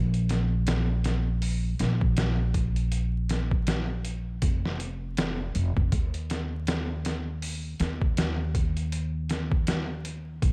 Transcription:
0.00 1.77 A#1 loud
0.14 closed hi-hat soft
0.29 snare soft
0.29 closed hi-hat medium
0.67 snare loud
0.67 closed hi-hat medium
1.04 snare soft
1.04 closed hi-hat medium
1.42 open hi-hat medium
1.79 4.39 A#1 medium
1.79 snare soft
1.79 closed hi-hat medium
2.01 kick medium
2.17 snare loud
2.17 closed hi-hat medium
2.54 kick medium
2.54 closed hi-hat medium
2.76 closed hi-hat soft
2.92 closed hi-hat medium
3.29 snare soft
3.29 closed hi-hat medium
3.51 kick medium
3.67 snare loud
3.67 closed hi-hat medium
4.05 closed hi-hat medium
4.42 5.55 F1 medium
4.42 kick loud
4.42 closed hi-hat medium
4.65 snare soft
4.80 closed hi-hat medium
5.17 snare loud
5.17 closed hi-hat medium
5.55 5.74 F1 medium
5.55 closed hi-hat medium
5.77 5.91 F1 medium
5.77 kick loud
5.92 7.77 D#2 medium
5.92 kick loud
5.92 closed hi-hat medium
6.14 closed hi-hat soft
6.30 snare soft
6.30 closed hi-hat medium
6.67 snare loud
6.67 closed hi-hat medium
7.05 snare soft
7.05 closed hi-hat medium
7.42 open hi-hat medium
7.80 10.40 D#2 medium
7.80 snare soft
7.80 closed hi-hat medium
8.02 kick medium
8.17 snare loud
8.17 closed hi-hat medium
8.55 kick medium
8.55 closed hi-hat medium
8.77 closed hi-hat soft
8.92 closed hi-hat medium
9.29 snare soft
9.29 closed hi-hat medium
9.52 kick medium
9.67 snare loud
9.67 closed hi-hat medium
10.05 closed hi-hat medium
10.42 10.52 A#1 medium
10.42 kick loud
10.42 closed hi-hat medium

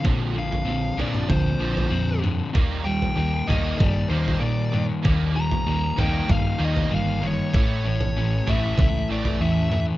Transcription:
0.00 1.60 A#2 medium
0.00 1.28 D3 medium
0.00 0.33 F3 medium
0.00 0.64 C4 medium
0.04 0.52 A#1 medium
0.04 0.34 A#2 medium
0.04 0.34 D3 medium
0.04 0.34 F3 medium
0.04 kick loud
0.04 floor tom medium
0.35 0.64 A#2 medium
0.35 0.64 D3 medium
0.35 1.27 F3 medium
0.35 1.02 F5 medium
0.52 floor tom medium
0.65 0.90 A#1 medium
0.65 0.96 A#2 medium
0.65 0.96 D3 medium
0.65 1.89 C4 medium
0.97 1.22 A#1 medium
0.97 1.28 A#2 medium
0.97 1.28 D3 medium
0.97 1.28 F3 medium
0.97 2.54 D4 medium
0.97 1.29 D5 medium
0.97 floor tom medium
1.14 mid tom medium
1.28 1.53 D2 medium
1.28 1.57 A#2 medium
1.28 1.58 D3 medium
1.28 2.54 F3 medium
1.28 2.19 C5 medium
1.28 kick loud
1.28 floor tom medium
1.59 1.84 A#1 medium
1.59 1.90 A#2 medium
1.59 2.22 D3 medium
1.59 1.90 D3 medium
1.59 1.90 F3 loud
1.77 floor tom medium
1.91 2.40 F2 medium
1.91 2.20 A#2 medium
1.91 2.20 D3 medium
1.91 2.54 C4 medium
2.22 2.51 A#2 medium
2.22 2.51 D3 medium
2.22 2.54 D3 medium
2.22 mid tom medium
2.53 3.03 D#2 medium
2.53 2.83 D#3 medium
2.53 4.09 D#3 medium
2.53 2.84 G3 medium
2.53 2.84 A#3 loud
2.53 kick loud
2.53 floor tom medium
2.84 3.13 D#3 medium
2.84 3.13 G3 medium
2.84 3.79 G3 medium
2.84 3.50 G5 medium
3.02 floor tom medium
3.16 3.41 D#2 medium
3.16 3.44 D#3 medium
3.16 3.45 G3 medium
3.16 4.41 A#3 medium
3.47 3.72 D#2 medium
3.47 3.77 D#3 medium
3.47 3.78 G3 loud
3.47 3.78 A#3 loud
3.47 5.04 D#4 medium
3.47 3.77 D#5 medium
3.47 floor tom medium
3.47 mid tom medium
3.78 4.04 G2 medium
3.78 4.07 D#3 medium
3.78 4.08 G3 medium
3.78 5.34 G3 medium
3.78 4.09 D5 medium
3.78 kick loud
3.78 floor tom medium
4.09 4.34 D#2 medium
4.09 4.40 D#3 medium
4.09 4.72 D#3 medium
4.09 4.40 G3 medium
4.09 4.40 A#3 loud
4.09 4.40 C5 medium
4.28 floor tom medium
4.40 4.90 A#2 medium
4.40 4.70 D#3 medium
4.40 4.70 G3 medium
4.40 5.65 A#3 medium
4.40 4.85 D5 medium
4.72 5.01 D#3 medium
4.72 5.03 D#3 medium
4.72 5.01 G3 medium
4.72 mid tom medium
5.03 5.52 D#2 medium
5.03 5.33 D#3 medium
5.03 6.58 D#3 medium
5.03 5.33 G3 medium
5.03 5.33 A#3 loud
5.03 kick loud
5.03 floor tom medium
5.34 5.63 D#3 medium
5.34 5.63 G3 medium
5.34 6.27 G3 medium
5.34 6.00 A#5 loud
5.51 floor tom medium
5.66 5.91 D#2 medium
5.66 5.95 D#3 medium
5.66 5.95 G3 medium
5.66 6.90 A#3 medium
5.96 6.21 D#2 medium
5.96 6.27 D#3 medium
5.96 6.27 G3 medium
5.96 6.27 A#3 loud
5.96 7.53 D#4 medium
5.96 6.31 G5 medium
5.96 floor tom medium
5.96 mid tom medium
6.28 6.53 G2 medium
6.28 6.56 D#3 medium
6.28 7.53 G3 medium
6.28 6.57 G3 medium
6.28 6.62 F5 loud
6.28 kick loud
6.28 floor tom medium
6.58 6.83 D#2 medium
6.58 6.89 D#3 medium
6.58 7.20 D#3 medium
6.58 6.89 G3 medium
6.58 6.89 A#3 loud
6.64 6.91 D#5 medium
6.77 floor tom medium
6.90 7.39 G1 loud
6.90 7.19 D#3 medium
6.90 7.19 G3 medium
6.90 7.54 A#3 medium
6.94 7.25 F5 medium
7.22 7.53 D#3 medium
7.22 7.50 D#3 medium
7.22 7.50 G3 medium
7.22 mid tom medium
7.27 7.87 C#5 medium
7.53 8.02 A1 medium
7.53 9.97 A2 medium
7.53 7.83 A2 loud
7.53 7.83 E3 loud
7.53 7.84 A3 loud
7.53 kick loud
7.53 floor tom medium
7.85 8.13 A2 medium
7.85 8.13 E3 medium
7.85 8.79 A3 medium
7.85 8.50 C#5 medium
8.01 floor tom medium
8.16 8.40 A1 medium
8.16 8.44 A2 medium
8.16 8.45 E3 medium
8.16 9.41 C#4 medium
8.46 8.71 A1 loud
8.46 8.76 A2 medium
8.46 8.77 E3 medium
8.46 8.77 A3 medium
8.46 9.97 E4 medium
8.46 floor tom medium
8.46 mid tom medium
8.51 9.07 E5 medium
8.78 9.02 C#2 medium
8.78 9.07 A2 medium
8.78 9.07 E3 medium
8.78 9.97 A3 medium
8.78 kick loud
8.78 floor tom medium
9.09 9.33 A1 medium
9.09 9.39 A2 medium
9.09 9.39 E3 loud
9.09 9.70 E3 medium
9.09 9.39 A3 loud
9.09 9.40 D5 medium
9.25 floor tom medium
9.40 9.88 E2 medium
9.40 9.68 A2 medium
9.40 9.69 E3 medium
9.40 9.97 C#4 medium
9.40 9.84 E5 medium
9.71 9.97 A2 medium
9.71 9.97 E3 medium
9.71 mid tom medium

